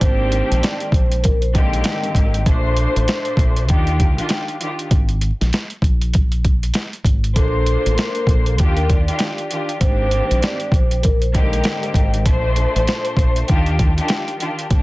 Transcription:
0.00 G#1 G#2 D#3 A#3 C4 D4 G4 C5, kick, closed hi-hat
0.32 closed hi-hat
0.51 A#1, closed hi-hat
0.62 D5, snare, closed hi-hat
0.80 closed hi-hat
0.92 A#1 C5, kick, closed hi-hat
1.12 closed hi-hat
1.23 A#4, kick, closed hi-hat
1.41 C5, closed hi-hat
1.54 G#2 D3 D#3 A#3 C4 G4 D#5, kick, closed hi-hat
1.73 closed hi-hat
1.84 snare, closed hi-hat
2.03 closed hi-hat
2.15 G#1, kick, closed hi-hat
2.34 closed hi-hat
2.46 A#1 A#2 A3 D4 C5, kick, closed hi-hat
2.77 closed hi-hat
2.96 A1, closed hi-hat
3.08 snare, closed hi-hat
3.25 closed hi-hat
3.37 A#1, kick, closed hi-hat
3.56 closed hi-hat
3.69 D#2 D#3 D4 F4 G4, kick, closed hi-hat
3.87 closed hi-hat
4.00 kick, closed hi-hat
4.17 D#3 D4 F4 G4, closed hi-hat
4.29 snare, closed hi-hat
4.48 closed hi-hat
4.61 D#3 D4 F4 G4, closed hi-hat
4.79 closed hi-hat
4.91 G#1, kick, closed hi-hat
5.09 closed hi-hat
5.21 closed hi-hat
5.41 A#1, snare, closed hi-hat
5.53 snare, closed hi-hat
5.70 closed hi-hat
5.82 A#1, kick, closed hi-hat
6.01 closed hi-hat
6.13 kick, closed hi-hat
6.32 closed hi-hat
6.45 kick, closed hi-hat
6.63 closed hi-hat
6.74 snare, closed hi-hat
6.93 closed hi-hat
7.05 G#1, kick, closed hi-hat
7.24 closed hi-hat
7.36 A#1 A#2 A#3 D4 A4 C5, kick, closed hi-hat
7.66 closed hi-hat
7.86 A1, closed hi-hat
7.98 A#4, snare, closed hi-hat
8.15 closed hi-hat
8.27 A#1 A4, kick, closed hi-hat
8.46 closed hi-hat
8.58 D#2 D#3 D4 F4 G4, kick, closed hi-hat
8.76 A#4, closed hi-hat
8.90 D5, kick, closed hi-hat
9.07 D#3 D4 F4 G4, closed hi-hat
9.19 snare, closed hi-hat
9.38 closed hi-hat
9.50 D#3 D4 F4 G4, closed hi-hat
9.69 closed hi-hat
9.80 G#1 G#2 D#3 A#3 C4 D4 G4 C5, kick, closed hi-hat
10.11 closed hi-hat
10.31 A#1, closed hi-hat
10.42 D5, snare, closed hi-hat
10.60 closed hi-hat
10.72 A#1 C5, kick, closed hi-hat
10.91 closed hi-hat
11.03 A#4, kick, closed hi-hat
11.21 C5, closed hi-hat
11.34 G#2 D3 D#3 A#3 C4 G4 D#5, kick, closed hi-hat
11.53 closed hi-hat
11.64 snare, closed hi-hat
11.83 closed hi-hat
11.94 G#1, kick, closed hi-hat
12.14 closed hi-hat
12.25 A#1 A#2 A3 D4 C5, kick, closed hi-hat
12.56 closed hi-hat
12.76 A1, closed hi-hat
12.87 snare, closed hi-hat
13.05 closed hi-hat
13.17 A#1, kick, closed hi-hat
13.36 closed hi-hat
13.48 D#2 D#3 D4 F4 G4, kick, closed hi-hat
13.66 closed hi-hat
13.79 kick, closed hi-hat
13.97 D#3 D4 F4 G4, closed hi-hat
14.08 snare, closed hi-hat
14.28 closed hi-hat
14.40 D#3 D4 F4 G4, closed hi-hat
14.59 closed hi-hat
14.69 G#1 G#2 D#3 A#3 C4 D4 G4, kick, closed hi-hat

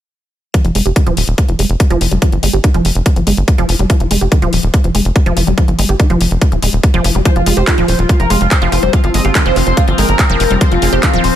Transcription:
0.54 F3, kick, closed hi-hat
0.65 F1 F3, closed hi-hat
0.75 F1 G#3, open hi-hat
0.86 F1 G4, closed hi-hat
0.96 D#3, kick, closed hi-hat
1.07 D#1 F3, closed hi-hat
1.17 D#1, open hi-hat
1.28 D#1, closed hi-hat
1.38 kick, closed hi-hat
1.48 F1 F3, closed hi-hat
1.59 F1 G#3, open hi-hat
1.69 F1, closed hi-hat
1.80 kick, closed hi-hat
1.90 F1 F3, closed hi-hat
2.01 F1 F3, open hi-hat
2.11 F1 G3, closed hi-hat
2.22 F3, kick, closed hi-hat
2.32 G1 F3, closed hi-hat
2.43 G1 G#3, open hi-hat
2.53 G1 G4, closed hi-hat
2.64 D#3, kick, closed hi-hat
2.74 F1 F3, closed hi-hat
2.85 F1, open hi-hat
2.95 F1, closed hi-hat
3.06 kick, closed hi-hat
3.16 G1 F3, closed hi-hat
3.27 G1 G#3, open hi-hat
3.37 G1, closed hi-hat
3.48 kick, closed hi-hat
3.58 F1 F3, closed hi-hat
3.69 F1 F3, open hi-hat
3.79 F1 G3, closed hi-hat
3.90 F3, kick, closed hi-hat
4.00 F1 F3, closed hi-hat
4.11 F1 G#3, open hi-hat
4.21 F1 G4, closed hi-hat
4.32 D#3, kick, closed hi-hat
4.42 D#1 F3, closed hi-hat
4.53 D#1, open hi-hat
4.63 D#1, closed hi-hat
4.74 kick, closed hi-hat
4.84 F1 F3, closed hi-hat
4.95 F1 G#3, open hi-hat
5.05 F1, closed hi-hat
5.16 kick, closed hi-hat
5.26 F1 F3, closed hi-hat
5.37 F1 F3, open hi-hat
5.47 F1 G3, closed hi-hat
5.58 F3, kick, closed hi-hat
5.68 G1 F3, closed hi-hat
5.79 G1 G#3, open hi-hat
5.89 G1 G4, closed hi-hat
6.00 D#3, kick, closed hi-hat
6.10 F1 F3, closed hi-hat
6.21 F1, open hi-hat
6.31 F1, closed hi-hat
6.42 kick, closed hi-hat
6.52 D#1 F3, closed hi-hat
6.62 D#1 G#3, open hi-hat
6.73 D#1, closed hi-hat
6.83 kick, closed hi-hat
6.94 F1 F3, closed hi-hat
7.04 F1 F3, open hi-hat
7.15 F1 G3, closed hi-hat
7.25 F3 C4 C5, kick, closed hi-hat
7.36 F1 F3 F4, closed hi-hat
7.46 F1 G#3 F4, open hi-hat
7.57 F1 G4 C5, closed hi-hat
7.67 D#3 F4, kick, clap, closed hi-hat
7.78 D#1 F3 F4, closed hi-hat
7.88 D#1 C5, open hi-hat
7.99 D#1 F4, closed hi-hat
8.09 F4, kick, closed hi-hat
8.20 F1 F3 A#4, closed hi-hat
8.30 F1 G#3 F4, open hi-hat
8.41 F1 F4, closed hi-hat
8.51 C5, kick, clap, closed hi-hat
8.62 F1 F3 F4, closed hi-hat
8.72 F1 F3 F4, open hi-hat
8.83 F1 G3 C5, closed hi-hat
8.93 F3 F4, kick, closed hi-hat
9.04 G1 F3 F4, closed hi-hat
9.14 G1 G#3 D#5, open hi-hat
9.25 G1 F4 G4, closed hi-hat
9.35 D#3 F4, kick, clap, closed hi-hat
9.46 F1 F3 C5, closed hi-hat
9.56 F1 F4, clap, open hi-hat
9.67 F1 C5, closed hi-hat
9.77 F4, kick, closed hi-hat
9.88 G1 F3 F4, closed hi-hat
9.98 G1 G#3 A#4, open hi-hat
10.09 G1, closed hi-hat
10.19 kick, clap, closed hi-hat
10.30 F1 F3, closed hi-hat
10.40 F1 F3, open hi-hat
10.51 F1 G3, closed hi-hat
10.61 F3 C5, kick, closed hi-hat
10.72 F1 F3 F4, closed hi-hat
10.82 F1 G#3 F4, open hi-hat
10.93 F1 G4 C5, closed hi-hat
11.03 D#3 F4, kick, clap, closed hi-hat
11.14 D#1 F3 F4, closed hi-hat
11.24 D#1 C5, open hi-hat

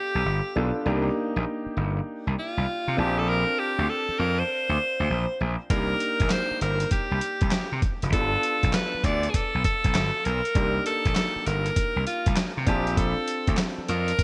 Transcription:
Already playing: B3 D4 F4 G4 A4
0.15 B1
0.25 G1
0.56 B1 B3 D4 F4 A4
0.85 C2 A#3 D4 D#4 G4
1.36 A#1
1.66 muted slap bass stroke
1.77 G1
2.27 C2
2.39 F4
2.57 C2
2.88 C3
2.97 A#1 C4 D4 F4 G4 A5
3.19 A4
3.29 A#4
3.59 G4
3.78 D2
3.89 A4
4.09 muted slap bass stroke
4.19 F2 A#4
4.39 C5
4.69 D2
5.00 D2
5.10 A#1
5.41 A#1
5.70 C2 A#3 D4 D#4 G4 A#4, kick, closed hi-hat
6.00 closed hi-hat
6.20 A#1, kick, closed hi-hat
6.30 C5, snare, clap, closed hi-hat
6.51 muted slap bass stroke
6.61 G1 A#4, closed hi-hat
6.80 closed hi-hat
6.91 G4, kick, closed hi-hat
7.11 C2
7.21 closed hi-hat
7.41 C2, kick, closed hi-hat
7.51 snare, clap, closed hi-hat
7.72 C3
7.82 kick, closed hi-hat
8.02 F1, closed hi-hat
8.12 B3 D4 F4 G4 A4, kick, closed hi-hat
8.21 A5
8.43 closed hi-hat
8.63 B1, kick, closed hi-hat
8.73 B4, snare, clap, closed hi-hat
8.94 muted slap bass stroke
9.04 D2 D5, kick, closed hi-hat
9.23 closed hi-hat
9.30 G#4, closed hi-hat
9.34 A4, kick
9.55 B1
9.64 A4, kick, closed hi-hat
9.84 B1, kick, closed hi-hat
9.95 G1, snare, clap, closed hi-hat
10.25 B1 A#4, closed hi-hat
10.45 closed hi-hat
10.54 C2 A#3 D4 D#4 G4, kick, closed hi-hat
10.86 A4, closed hi-hat
11.05 A#1, kick, closed hi-hat
11.16 snare, clap, closed hi-hat
11.36 muted slap bass stroke
11.46 G1 A#4, closed hi-hat
11.66 closed hi-hat
11.76 kick, closed hi-hat
11.96 C2
12.07 F4, closed hi-hat
12.26 C2, kick, closed hi-hat
12.36 snare, clap, closed hi-hat
12.57 C3
12.66 A#1 C4 D4 F4 G4 A5, kick, closed hi-hat
12.87 closed hi-hat
12.97 A4, kick, closed hi-hat
13.28 closed hi-hat
13.47 D2, kick, closed hi-hat
13.57 snare, clap, closed hi-hat
13.78 muted slap bass stroke
13.88 F2 A#4, closed hi-hat
14.08 closed hi-hat
14.19 kick, closed hi-hat

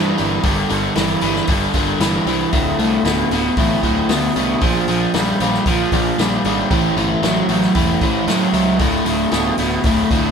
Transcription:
Already playing: G2 E3 D4 G4 C5
0.17 G1 G2 E3 D4 G4 A#4, open hi-hat
0.43 G1 G2 D3 D4 G4 A#4, kick, open hi-hat
0.69 G1 G2 D3, open hi-hat
0.96 G1 G2 E3, snare, open hi-hat
1.21 G1 G2 E3, open hi-hat
1.36 snare
1.47 G1 G2 D3, kick, open hi-hat
1.73 G1 G2 D3 D4 G4 A#4, kick, open hi-hat
2.00 G1 G2 E3, snare, open hi-hat
2.26 C2 G2 E3 D4 G4 C5, open hi-hat
2.53 D1 D2 A2 D4 F4 A4, kick, open hi-hat
2.79 C2 D2 A2, open hi-hat
3.04 D1 D2 B2, snare, open hi-hat
3.30 D1 D2 B2, open hi-hat
3.57 A1 D2 A2, kick, open hi-hat
3.82 D1 D2 A2 D4 F4 C5, kick, open hi-hat
4.09 D2 B2, snare, open hi-hat
4.35 C2 D2 B2 D4 F4 G4, open hi-hat
4.60 A#1 A#2 F3 D4 G#4 C5, kick, open hi-hat
4.88 A#1 A#2 F3, open hi-hat
5.14 A#1 A#2 G3, snare, open hi-hat
5.40 A#1 A#2 G3, open hi-hat
5.54 snare
5.66 A#1 A#2 F3, kick, open hi-hat
5.92 A#1 A#2 F3 D4 G#4 D5, kick, open hi-hat
6.18 A#1 A#2 G3, snare, open hi-hat
6.44 G#1 A#2 G3 D4 G#4 D5, open hi-hat
6.70 A1 A2 E3 C#4 G4 C5, kick, open hi-hat
6.96 G1 A2 E3, open hi-hat
7.22 A1 A2 F#3, snare, open hi-hat
7.49 A1 A2 F#3, open hi-hat
7.62 snare
7.75 E1 A2 E3, kick, open hi-hat
8.01 A1 A2 E3 C#4 G4 C5, kick, open hi-hat
8.28 A2 F#3, snare, open hi-hat
8.53 C#2 A2 F#3 C#4 G4 C5, open hi-hat
8.79 D1 D2 A2 D4 F4 A4, kick, open hi-hat
9.05 D1 D2 A2, open hi-hat
9.31 D1 D2 B2, snare, open hi-hat
9.57 D1 D2 B2, open hi-hat
9.84 D1 D2 A2, kick, open hi-hat
10.10 D1 D2 A2 D4 F4 A4, kick, open hi-hat

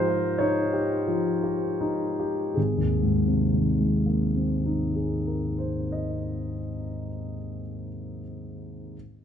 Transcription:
Already playing: G#2 F3 D#4 G4 A#4 C5 D#5
0.08 G4
0.38 D#4 C#5
0.73 G4
1.07 F3
1.43 G4
1.81 D#4
2.19 G4
2.54 G#1 G#4
2.77 D#2
3.02 G#2
3.27 C3
3.54 D#3
3.79 G#3
4.06 A#3
4.36 C4
4.66 D#4
4.96 G#4
5.27 A#4
5.58 C5
5.92 D#5

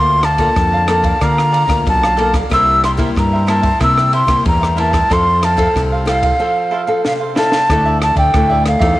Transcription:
Already playing: D2 D3 A#3 F4 D5 F5 A#5 C6
0.22 A4 D5 F5 A5 A#5, cross-stick, ride
0.38 A#3 F4 A4 D5 F5 A#5, kick, ride
0.56 F2 D3, kick, cross-stick, ride
0.72 D5 F5 A#5
0.86 A#3 F4 A4 D5 F5 A#5, cross-stick, ride
1.03 D5 F5 A#5, kick, ride
1.21 D3 A#3 F4 D5 F5 A#5, kick, cross-stick, ride
1.38 cross-stick
1.52 A4 D5 F5 A#5, ride
1.67 D2 A#3 F4 D5 F5 A#5, kick, cross-stick, ride
1.86 B1 D3 A5, kick, ride
2.03 D5 F5 A#5, cross-stick
2.17 A#3 F4 A4 D5 F5 A#5, ride
2.34 D5 F5 A#5, kick, cross-stick, ride
2.50 C2 C3 G3 A#3 E4 A#4 C5 E6, kick, cross-stick, ride
2.54 E5
2.83 E4 A#4 C5 E5 C6, cross-stick, ride
2.97 G3 A#3 E4 A#4 C5 E5, kick, ride
3.15 G2 A#5, kick, cross-stick, ride
3.33 A#4 C5 E5
3.47 G3 A#3 E4 A#4 C5 E5 A5, cross-stick, ride
3.62 A#4 C5 E5, kick, ride
3.80 C3 G3 A#3 E4 A#4 C5 E5 E6, kick, cross-stick, ride
3.98 cross-stick
4.12 E4 A#4 C5 E5 C6, ride
4.27 C2 G3 A#3 E4 A#4 C5 E5, kick, cross-stick, ride
4.45 E2 G2 A#5, kick, ride
4.61 A#4 C5 E5, cross-stick
4.76 G3 A#3 E4 A#4 C5 E5 A5, ride
4.91 A#4 C5 E5, kick, cross-stick, ride
5.10 F2 F3 C4 A4 C5 F5 C6, kick, cross-stick, ride
5.41 E4 A4 C5 F5 A5, cross-stick, ride
5.57 C4 E4 A4 C5 F5, kick, ride
5.75 C2 C3, kick, cross-stick, ride
5.92 A4 C5 F5
6.05 C4 E4 A4 C5 F5, cross-stick, ride
6.09 F5
6.23 A4 C5 F5, kick, ride
6.39 F3 C4 A4 C5 F5
6.71 E4 A4 C5 F5
6.87 C4 A4 C5 F5
7.05 C3 F5, snare
7.20 A4 C5 F5
7.35 C4 E4 A4 C5 F5 A5, snare
7.51 A4 C5 F5, snare
7.69 D2 D3 A3 D4 E4 A4 D5 E5, kick, cross-stick, ride
7.85 A4 D5 E5
8.02 A5, cross-stick, ride
8.15 D2 A4 D5 E5 G5, kick, ride
8.34 D2 A2 A3 D4 E4 A4 D5 E5, kick, cross-stick, ride
8.50 A4 D5 E5
8.66 F5, cross-stick, ride
8.79 E2 C4 D#4 A4 D5 E5, kick, ride
8.97 F4

